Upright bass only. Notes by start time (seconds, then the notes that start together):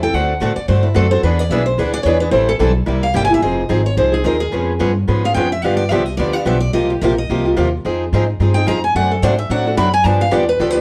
Already playing: E2
0.14 D2
0.42 A2
0.57 muted upright bass stroke
0.69 G2
0.96 F#2
1.23 E2
1.50 B1
1.78 D2
2.05 E2
2.33 A1
2.60 B1
2.87 C2
3.15 G1
3.42 F1
3.70 G#1
3.97 C2
4.25 D#2
4.53 F2
4.81 G2
5.08 G#2
5.36 F2
5.64 G2
5.91 C2
6.18 D2
6.46 B1
6.74 C2
7.02 A#1
7.29 C2
7.57 D#2
7.85 F2
8.13 G#2
8.39 G2
8.67 F2
8.95 F#2
9.23 G#2
9.50 A2
9.77 F#2
10.05 G2
10.32 E2
10.60 D2